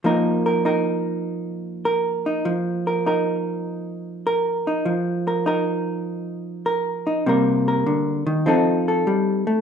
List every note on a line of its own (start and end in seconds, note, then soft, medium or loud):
0.04 2.45 F3 soft
0.04 4.85 A#3 soft
0.04 0.65 D#4 soft
0.04 0.46 A#4 soft
0.46 0.66 A#4 soft
0.65 2.26 D#4 soft
0.65 1.85 A#4 soft
1.85 2.87 A#4 medium
2.26 2.48 D#4 soft
2.45 4.84 F3 medium
2.87 3.07 A#4 soft
3.06 4.67 D#4 soft
3.06 4.26 A#4 soft
4.27 5.27 A#4 medium
4.67 4.88 D#4 soft
4.85 7.26 F3 medium
5.28 5.46 A#4 soft
5.46 7.05 D#4 soft
5.46 6.65 A#4 soft
6.66 7.23 A#4 medium
7.07 7.23 D#4 soft
7.26 7.86 C3 medium
7.26 8.44 G3 soft
7.26 8.46 A#3 soft
7.26 7.67 A#4 medium
7.68 8.44 A#4 soft
7.86 8.26 D3 soft
8.26 8.46 D#3 medium
8.46 9.06 F3 medium
8.46 9.61 C4 soft
8.46 9.61 D#4 soft
8.46 8.87 A4 medium
8.88 9.61 A4 soft
9.07 9.47 G3 medium
9.47 9.61 A3 soft